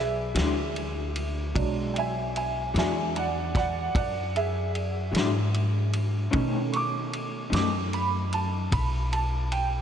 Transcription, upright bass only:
0.00 0.32 B1 medium
0.35 1.51 D2 medium
1.55 2.71 B1 medium
2.74 3.90 E2 loud
3.95 5.10 F#2 medium
5.13 6.29 G#2 medium
6.33 7.49 B2 medium
7.52 8.68 F#2 medium
8.72 9.82 B1 medium

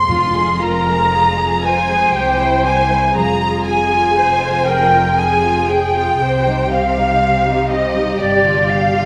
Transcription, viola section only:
0.08 0.57 F4 soft
0.61 1.13 A#4 soft
1.14 1.65 G#4 soft
1.64 3.17 C5 soft
3.16 4.15 G#4 soft
4.16 4.67 C5 soft
4.67 5.18 A#4 soft
5.17 6.21 G#4 soft
6.21 6.71 C5 soft
6.72 9.05 G4 soft

